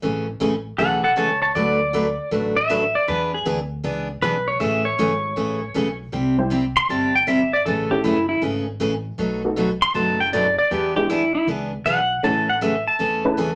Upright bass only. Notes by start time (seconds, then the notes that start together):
0.04 A1
0.41 A1
0.79 B1
1.17 C#2
1.55 D2
2.32 A1
3.08 E2
3.46 D2
3.84 C#2
4.22 B1
4.61 A1
4.99 G#1
5.37 A1
5.75 B1
6.13 C2
6.89 G1
7.66 A1
8.04 F#1
8.42 G#1
8.80 A1
9.18 B1
9.95 F#1
10.71 E2
11.47 C#2
11.85 B1
12.23 A1
13.00 E2